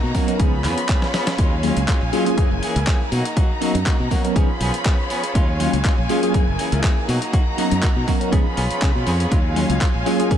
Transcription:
Already playing: D#4 A#5
0.03 B2 A#3 D#4 F#4
0.14 F#3 A#3 B3 C#4 D#4 F#4 A#4, kick, open hi-hat
0.27 F#3 A#3 B3 C#4 D#4 F#4 A#4, closed hi-hat
0.39 C#2 F3 B3 C#4 D#4 F4 G#4 C#5 B5, kick, closed hi-hat
0.64 F2 F3 B3 C#4 G#4, clap, open hi-hat
0.78 closed hi-hat
0.89 F3 B3 C#4 G#4, kick, clap, closed hi-hat
1.02 snare
1.13 F3 B3 C#4 G#4, snare, open hi-hat
1.27 B3 C#4 G#4, snare, closed hi-hat
1.38 D#2 F#3 G#3 C#4 F4 F5 G#5, kick, closed hi-hat
1.63 F#3 G#3 A#3 C#4 F4 G#4, open hi-hat
1.77 C#2, closed hi-hat
1.88 F#3 G#3 C#4 F4, kick, clap, closed hi-hat
2.01 A#1 G#3 C#4 F4
2.12 F#3 G#3 A#3 C#4 F4 G#4, open hi-hat
2.25 F#3 G#3 A#3 C#4 F4 G#4, closed hi-hat
2.37 F#2 E3 F#3 A#3 C#4 E4 G#4 A#4, kick, closed hi-hat
2.51 F#1
2.62 E3 A#3 C#4 G#4, open hi-hat
2.76 C#2, closed hi-hat
2.87 E3 A#3 C#4 G#4, kick, clap, closed hi-hat
3.11 B2 F#3 A#3 D#4 F#4 A#5, open hi-hat
3.25 A#3 D#4 F#4, closed hi-hat
3.36 F#3 A#3 D#4 F#4, kick, closed hi-hat
3.61 F#3 A#3 B3 C#4 D#4 F#4 A#4, open hi-hat
3.75 F#2, closed hi-hat
3.86 F#3 A#3 D#4 F#4, kick, clap, closed hi-hat
3.99 B2 A#3 D#4 F#4
4.11 F#3 A#3 B3 C#4 D#4 F#4 A#4, kick, open hi-hat
4.24 F#3 A#3 B3 C#4 D#4 F#4 A#4, closed hi-hat
4.36 C#2 F3 B3 C#4 D#4 F4 G#4 C#5 B5, kick, closed hi-hat
4.60 B1 F3 B3 C#4 G#4, open hi-hat
4.74 closed hi-hat
4.85 F3 B3 C#4 G#4, kick, clap, closed hi-hat
5.10 F3 B3 C#4 G#4, open hi-hat
5.23 B3 C#4 G#4, closed hi-hat
5.35 D#2 F#3 G#3 C#4 F4 F5 G#5, kick, closed hi-hat
5.59 F#3 G#3 A#3 C#4 F4 G#4, open hi-hat
5.73 C#2, closed hi-hat
5.84 F#3 G#3 C#4 F4, kick, clap, closed hi-hat
5.97 A#1 G#3 F4
6.09 F#3 G#3 A#3 C#4 F4 G#4, open hi-hat
6.22 F#3 A#3 C#4 F4 G#4, closed hi-hat
6.34 F#2 E3 F#3 A#3 C#4 E4 G#4 A#4, kick, closed hi-hat
6.47 F#1
6.59 E3 A#3 C#4 G#4, open hi-hat
6.72 C#2, closed hi-hat
6.83 E3 A#3 C#4 G#4, kick, clap, closed hi-hat
7.08 B2 F#3 A#3 D#4 F#4 A#5, open hi-hat
7.21 A#3 D#4 F#4, closed hi-hat
7.33 F#3 A#3 D#4 F#4, kick, closed hi-hat
7.57 F#3 A#3 B3 C#4 D#4 F#4 A#4, open hi-hat
7.71 F#2, closed hi-hat
7.82 F#3 A#3 D#4 F#4, kick, clap, closed hi-hat
7.96 B2 A#3 D#4 F#4
8.07 F#3 A#3 B3 C#4 D#4 F#4 A#4, kick, open hi-hat
8.20 F#3 A#3 B3 C#4 D#4 F#4 A#4, closed hi-hat
8.32 C#2 F3 B3 C#4 D#4 F4 G#4 C#5 B5, kick, closed hi-hat
8.46 muted fingered electric bass stroke
8.57 B1 F3 B3 C#4 G#4, open hi-hat
8.71 closed hi-hat
8.81 C#3 F3 B3 C#4 G#4, kick, clap, closed hi-hat
8.95 B2
9.06 F2 F3 B3 C#4 G#4, open hi-hat
9.20 B3 C#4 G#4, closed hi-hat
9.31 D#2 F#3 G#3 C#4 F4 F5 G#5, kick, closed hi-hat
9.56 F#3 G#3 A#3 C#4 F4 G#4, open hi-hat
9.70 C#2, closed hi-hat
9.81 F#3 G#3 C#4 F4, kick, clap, closed hi-hat
9.94 A#1 G#3 C#4 F4
10.05 F#3 G#3 A#3 C#4 F4 G#4, open hi-hat
10.19 F#3 G#3 A#3 C#4 F4 G#4, closed hi-hat
10.31 F#2 E3 A#3 C#4 E4 G#4 A#4, kick, closed hi-hat

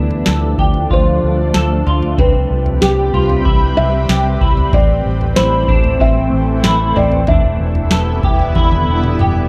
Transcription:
Already playing: D2 F3 A3 D4 D5
0.11 floor tom
0.26 D2 A4, snare
0.58 D2 G4, kick, floor tom
0.74 floor tom
0.91 D2 F4 C5, kick
1.23 D2
1.54 D2 A4, snare
1.87 D2 F4, floor tom
2.02 floor tom
2.18 C2 C3 G3 C4 G4 B4, kick, floor tom
2.51 C2
2.66 floor tom
2.81 C2 G4, snare
3.14 C2 F4, floor tom
3.29 floor tom
3.45 C2 E4, kick
3.77 C2 E5
4.09 C2 G4, snare
4.41 C2 E4, kick, floor tom
4.57 floor tom
4.72 A1 E3 A3 C4 D5, kick, floor tom
5.06 A1
5.21 floor tom
5.36 A1 E4 C5, snare
5.68 A1 D4, kick, floor tom
5.84 floor tom
6.00 A1 C4 E5, kick
6.32 A1
6.64 A1 E4, snare
6.96 A1 C4 D5, floor tom
7.12 floor tom
7.27 E1 D3 E3 G3 B3 D4 E4 E5, kick, floor tom
7.60 E1
7.75 floor tom
7.91 E1 A4, snare
8.23 E1 G4, kick, floor tom
8.39 floor tom
8.55 E1 E4, kick, high tom
8.72 high tom
8.88 E1
9.04 mid tom
9.19 E1 G4, mid tom

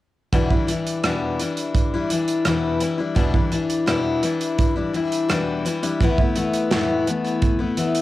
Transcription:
0.32 E2 B2 E3 G3 D4 E4, kick, closed hi-hat
0.50 E3 G3 D4 E4, kick
0.67 E3 G3 D4 E4, closed hi-hat
0.87 closed hi-hat
1.03 E2 B2 E3 G3 D4 E4, cross-stick, closed hi-hat
1.40 E3 G3 D4 E4, closed hi-hat
1.57 closed hi-hat
1.75 kick, closed hi-hat
1.94 E3 G3 D4 E4
2.10 E3 G3 D4 E4, closed hi-hat
2.28 closed hi-hat
2.45 E2 B2 E3 G3 D4 E4, cross-stick, closed hi-hat
2.81 E3 G3 D4 E4, closed hi-hat
2.98 E3 G3 D4 E4
3.15 E2 B2 E3 G3 D4 E4, kick, closed hi-hat
3.33 E3 G3 D4 E4, kick
3.51 E3 G3 D4 E4, closed hi-hat
3.70 closed hi-hat
3.86 E2 B2 E3 G3 D4 E4, cross-stick, closed hi-hat
4.22 E3 G3 D4 E4, closed hi-hat
4.41 closed hi-hat
4.58 kick, closed hi-hat
4.75 E3 G3 D4 E4
4.93 E3 G3 D4 E4, closed hi-hat
5.12 closed hi-hat
5.28 E2 B2 E3 G3 D4 E4, cross-stick, closed hi-hat
5.65 E3 G3 D4 E4, closed hi-hat
5.83 E3 G3 D4 E4, closed hi-hat
6.01 A2 E3 A3 B3 E4, kick, closed hi-hat
6.18 A3 B3 E4, kick
6.35 E3 A3 B3 E4, closed hi-hat
6.53 closed hi-hat
6.70 A2 E3 A3 B3 E4, snare, closed hi-hat
7.07 E3 A3 B3 E4, closed hi-hat
7.25 closed hi-hat
7.42 kick, closed hi-hat
7.59 A3 B3 E4
7.77 E3 A3 B3 E4, closed hi-hat
7.95 closed hi-hat

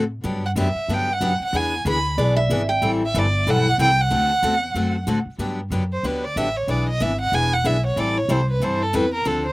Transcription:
Already playing: A2
0.24 G2 D3 F#3 B3 D4 G4
0.46 F#5
0.56 F#2 D3 F#3 B3 D4 G4
0.60 E5
0.75 muted upright bass stroke
0.88 G2 D3 F#3 B3 D4 G4
0.93 G5
1.13 F#5
1.21 F#2 D3 F#3 B3 D4 G4
1.40 muted upright bass stroke
1.45 F#5
1.53 E2 E3 B3 D4 G#4 G#5
1.85 D2 E3 B3 D4 G#4
1.89 B5
2.18 B1 E3 B3 D4 G#4 D5
2.36 E5
2.50 G#1 E3 B3 D4 G#4
2.69 G5
2.82 A1 E3 G3 C4 E4 A4
3.06 E5
3.14 G1 E3 G3 C4 E4 A4
3.19 D5
3.47 B1 E3 G3 C4 E4 A4 F#5
3.78 C2 E3 G3 C4 E4 A4 G5
4.01 F#5
4.10 D2 D3 A3 C4 F#4 A4
4.43 E2 D3 A3 C4 F#4 A4
4.75 F#2 D3 A3 C4 F#4 A4
5.07 A2 D3 A3 C4 F#4 A4
5.26 muted upright bass stroke
5.38 G2 D3 F#3 B3 D4 G4
5.70 F#2 D3 F#3 B3 D4 G4
5.92 C5
6.03 D2 D3 F#3 B3 D4 G4 B4
6.24 D5
6.36 A1 D3 F#3 B3 D4 G4 E5
6.56 C#5
6.67 B1 E3 B3 D4 G#4 D5
6.89 D#5
7.00 G#1 E3 B3 D4 G#4 E5
7.21 F#5
7.32 E1 E3 B3 D4 G#4 G#5
7.53 F#5
7.64 B1 E3 B3 D4 G#4 E5
7.86 C#5
7.96 A1 E3 G3 C4 E4 A4 D5
8.18 C#5
8.29 C2 E3 G3 C4 E4 A4 C5
8.51 B4
8.60 G2 E3 G3 C4 E4 A4 C5
8.82 A4
8.93 E2 E3 G3 C4 E4 A4 B4
9.14 A#4
9.25 D2 D3 F3 C4 D4 A4
9.46 C5

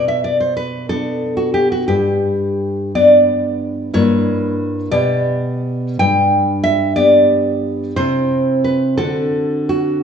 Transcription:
Already playing: B2
0.08 E5
0.24 D5
0.40 C5
0.57 B4
0.89 B3 D4 A4
1.37 F#4
1.54 G4
1.72 F#4
1.88 G2 G4
2.95 B3 D4 D5
3.94 G2 A#3 E4 C#5
4.91 B2 B3 G4 D5
5.99 G2 G5
6.64 E5
6.96 B3 G4 D5
7.96 C3 C4 E4 C5
8.64 B4
8.97 D3 C4 F#4 A4
9.69 F#4

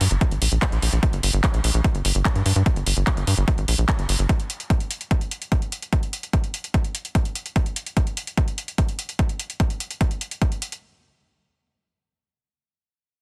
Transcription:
0.01 G2, open hi-hat
0.11 G1, closed hi-hat
0.21 kick, closed hi-hat
0.31 G#1, closed hi-hat
0.42 A#1, open hi-hat
0.52 A#1, closed hi-hat
0.62 kick, clap, closed hi-hat
0.72 A#1, closed hi-hat
0.82 A#1, open hi-hat
0.93 A#1, closed hi-hat
1.03 kick, closed hi-hat
1.13 G1, closed hi-hat
1.23 G1, open hi-hat
1.33 G1, closed hi-hat
1.44 kick, clap, closed hi-hat
1.54 A#1, closed hi-hat
1.64 A#1, open hi-hat
1.74 A#1, closed hi-hat
1.84 kick, closed hi-hat
1.95 G1, closed hi-hat
2.05 G1, open hi-hat
2.15 G1, closed hi-hat
2.25 kick, clap, closed hi-hat
2.35 G2, closed hi-hat
2.46 G2, open hi-hat
2.56 G2, closed hi-hat
2.66 kick, closed hi-hat
2.76 G1, closed hi-hat
2.86 G1, open hi-hat
2.97 G1, closed hi-hat
3.07 kick, clap, closed hi-hat
3.17 G1, closed hi-hat
3.27 G2, open hi-hat
3.37 G1, closed hi-hat
3.48 kick, closed hi-hat
3.58 G#1, closed hi-hat
3.68 A#1, open hi-hat
3.78 A#1, closed hi-hat
3.88 kick, clap, closed hi-hat
3.99 G1, closed hi-hat
4.09 G1, open hi-hat
4.19 G1, closed hi-hat
4.29 kick, closed hi-hat
4.40 closed hi-hat
4.50 closed hi-hat
4.60 closed hi-hat
4.70 kick, closed hi-hat
4.80 closed hi-hat
4.91 closed hi-hat
5.01 closed hi-hat
5.11 kick, closed hi-hat
5.21 closed hi-hat
5.31 closed hi-hat
5.42 closed hi-hat
5.52 kick, closed hi-hat
5.62 closed hi-hat
5.72 closed hi-hat
5.82 closed hi-hat
5.93 kick, closed hi-hat
6.03 closed hi-hat
6.13 closed hi-hat
6.23 closed hi-hat
6.33 kick, closed hi-hat
6.44 closed hi-hat
6.54 closed hi-hat
6.64 closed hi-hat
6.74 kick, closed hi-hat
6.84 closed hi-hat
6.95 closed hi-hat
7.05 closed hi-hat
7.15 kick, closed hi-hat
7.25 closed hi-hat
7.35 closed hi-hat
7.46 closed hi-hat
7.56 kick, closed hi-hat
7.66 closed hi-hat
7.76 closed hi-hat
7.86 closed hi-hat
7.97 kick, closed hi-hat
8.07 closed hi-hat
8.17 closed hi-hat
8.27 closed hi-hat
8.37 kick, closed hi-hat
8.48 closed hi-hat
8.58 closed hi-hat
8.68 closed hi-hat
8.78 kick, closed hi-hat
8.89 closed hi-hat
8.99 closed hi-hat
9.09 closed hi-hat
9.19 kick, closed hi-hat
9.29 closed hi-hat
9.40 closed hi-hat
9.50 closed hi-hat
9.60 kick, closed hi-hat
9.70 closed hi-hat
9.80 closed hi-hat
9.91 closed hi-hat
10.01 kick, closed hi-hat
10.11 closed hi-hat
10.21 closed hi-hat
10.31 closed hi-hat
10.42 kick, closed hi-hat
10.52 closed hi-hat
10.62 closed hi-hat
10.72 closed hi-hat

